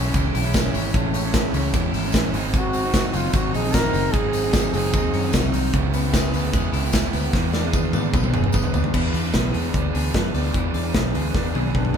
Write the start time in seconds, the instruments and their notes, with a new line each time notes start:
Already playing: fingered electric bass B1, clean electric guitar A2 E3 G#3 C#4, overdriven electric guitar E3 G#3 C#4 E4
0.13 fingered electric bass C#2, overdriven electric guitar A2 E3 G#3 C#4 E4, clean electric guitar E3, kick, hi-hat pedal, ride, tambourine
0.34 fingered electric bass B1, clean electric guitar E4, open hi-hat, tambourine
0.43 overdriven electric guitar G#3 C#4 E4
0.53 clean electric guitar G#3, kick, snare, hi-hat pedal, ride, tambourine
0.63 overdriven electric guitar G#3 C#4 E4
0.74 fingered electric bass G#1, clean electric guitar C#4, open hi-hat, tambourine
0.93 fingered electric bass A1, overdriven electric guitar A2 E3 G#3 C#4 E4, clean electric guitar A2, kick, hi-hat pedal, ride, tambourine
1.14 clean electric guitar C#4, open hi-hat, tambourine
1.22 overdriven electric guitar G#3 C#4 E4
1.34 clean electric guitar G#3, kick, snare, ride, tambourine
1.53 fingered electric bass C#2, overdriven electric guitar E3 G#3 C#4 E4, clean electric guitar C#4, open hi-hat, tambourine
1.74 fingered electric bass E2, overdriven electric guitar A2 E3 G#3 C#4 E4, clean electric guitar E3, kick, hi-hat pedal, ride, tambourine
1.93 fingered electric bass G#1, clean electric guitar E4, open hi-hat
2.04 overdriven electric guitar G#3 C#4 E4
2.12 fingered electric bass A1, clean electric guitar G#3, kick, snare, hi-hat pedal, ride, tambourine
2.24 overdriven electric guitar G#3 C#4 E4
2.33 fingered electric bass G#1, overdriven electric guitar G#2 D#3 F#3 C4 D#4, clean electric guitar G#2, open hi-hat, tambourine
2.54 clean electric guitar G#2, duduk F#4, kick, hi-hat pedal, ride, tambourine
2.73 clean electric guitar C4, open hi-hat, tambourine
2.83 overdriven electric guitar F#3 C4 D#4
2.94 clean electric guitar F#3, kick, snare, hi-hat pedal, ride, tambourine
3.13 fingered electric bass F#1, overdriven electric guitar D#3 F#3 C4 D#4, clean electric guitar C4, duduk F4, open hi-hat, tambourine
3.33 fingered electric bass G#1, overdriven electric guitar G#2 D#3 F#3 C4 D#4, clean electric guitar D#3, duduk F#4, kick, hi-hat pedal, ride, tambourine
3.53 fingered electric bass A#1, clean electric guitar D#4, duduk G#4, open hi-hat
3.64 overdriven electric guitar F#3 C4 D#4
3.73 clean electric guitar F#3, duduk A#4, kick, snare, hi-hat pedal, ride, tambourine
3.84 overdriven electric guitar F#3 C4 D#4
3.93 fingered electric bass F#1, clean electric guitar C4, open hi-hat, tambourine
4.13 fingered electric bass G#1, clean electric guitar G#2, overdriven electric guitar G#2 D#3 F#3 C4 D#4, duduk G#4, kick, hi-hat pedal, ride
4.33 clean electric guitar C4, open hi-hat, tambourine
4.44 overdriven electric guitar F#3 C4 D#4
4.53 clean electric guitar F#3, kick, snare, hi-hat pedal, ride, tambourine
4.73 fingered electric bass F#1, overdriven electric guitar D#3 F#3 C4 D#4, clean electric guitar C4, duduk G#4, open hi-hat, tambourine
4.93 fingered electric bass D#2, overdriven electric guitar G#2 D#3 F#3 C4 D#4, clean electric guitar D#3, kick, hi-hat pedal, ride, tambourine
5.13 fingered electric bass F#2, clean electric guitar C#4, open hi-hat, tambourine
5.24 overdriven electric guitar F#3 C4 D#4, clean electric guitar D#4
5.33 fingered electric bass C2, clean electric guitar F#3, kick, snare, hi-hat pedal, ride, tambourine
5.44 overdriven electric guitar F#3 C4 D#4
5.53 fingered electric bass C2, clean electric guitar C4, open hi-hat, tambourine
5.74 fingered electric bass C#2, clean electric guitar C#3, overdriven electric guitar C#3 G#3 B3 E4, kick, hi-hat pedal, ride
5.93 clean electric guitar B3, open hi-hat, tambourine
6.04 overdriven electric guitar G#3 B3 E4
6.13 clean electric guitar G#3, kick, snare, ride, tambourine
6.33 fingered electric bass D2, overdriven electric guitar C#3 G#3 B3, clean electric guitar B3, open hi-hat, tambourine
6.37 overdriven electric guitar E4
6.53 fingered electric bass E2, overdriven electric guitar C#3 G#3 B3 E4, clean electric guitar G#3, kick, hi-hat pedal, ride, tambourine
6.73 fingered electric bass C#2, clean electric guitar E4, open hi-hat
6.82 overdriven electric guitar G#3 B3 E4
6.92 clean electric guitar G#3, kick, snare, hi-hat pedal, ride, tambourine
7.03 overdriven electric guitar G#3 B3 E4
7.13 fingered electric bass D2, clean electric guitar B3, open hi-hat, tambourine
7.33 fingered electric bass E2, overdriven electric guitar E3 B3 D4 G#4, clean electric guitar E3, kick, snare
7.53 clean electric guitar D4, snare, tambourine
7.63 overdriven electric guitar B3 D4 G#4
7.73 clean electric guitar B3, kick, high tom, tambourine
7.93 fingered electric bass G#2, overdriven electric guitar E3 B3 D4 G#4, clean electric guitar D4, high tom, tambourine
8.13 fingered electric bass B1, overdriven electric guitar E3 B3 D4 G#4, clean electric guitar B3, kick, mid tom, tambourine
8.24 mid tom
8.34 fingered electric bass E1, clean electric guitar G#4, mid tom, tambourine
8.43 overdriven electric guitar B3 D4 G#4, mid tom
8.52 fingered electric bass F#1, clean electric guitar B3, kick, mid tom, tambourine
8.63 overdriven electric guitar B3 D4 G#4, floor tom
8.74 fingered electric bass D2, clean electric guitar D4, floor tom, tambourine
8.84 floor tom
8.94 fingered electric bass E2, overdriven electric guitar E3 B3 D4 G#4, clean electric guitar E3, kick, crash
9.14 fingered electric bass E2, clean electric guitar D4, open hi-hat
9.24 overdriven electric guitar B3 D4 G#4
9.34 fingered electric bass B1, clean electric guitar B3, kick, snare, closed hi-hat
9.53 fingered electric bass E2, overdriven electric guitar E3 B3 D4 G#4, clean electric guitar G#4, open hi-hat
9.73 fingered electric bass D2, overdriven electric guitar E3 B3 D4, clean electric guitar D4, kick, closed hi-hat
9.78 overdriven electric guitar G#4
9.94 fingered electric bass D2, overdriven electric guitar E3 B3 D4 G#4, clean electric guitar G#4, open hi-hat
10.14 fingered electric bass F#2, clean electric guitar B3, kick, snare, closed hi-hat
10.34 fingered electric bass D2, overdriven electric guitar E3 B3 D4 G#4, clean electric guitar D4, open hi-hat
10.54 fingered electric bass E2, clean electric guitar E3, overdriven electric guitar E3 B3 D4 G#4, kick, closed hi-hat
10.74 fingered electric bass E2, clean electric guitar D4, open hi-hat
10.84 overdriven electric guitar B3 D4 G#4
10.94 fingered electric bass B1, clean electric guitar B3, kick, snare, closed hi-hat
11.14 fingered electric bass D2, overdriven electric guitar E3 B3 D4 G#4, clean electric guitar G#4, open hi-hat
11.34 fingered electric bass E2, overdriven electric guitar E3 B3 D4 G#4, clean electric guitar D4, kick, snare
11.54 fingered electric bass B1, overdriven electric guitar E3 B3 D4 G#4, clean electric guitar G#4, high tom
11.75 fingered electric bass B1, clean electric guitar B3, duduk D4, kick, mid tom
11.85 mid tom
11.93 fingered electric bass D2, overdriven electric guitar E3, floor tom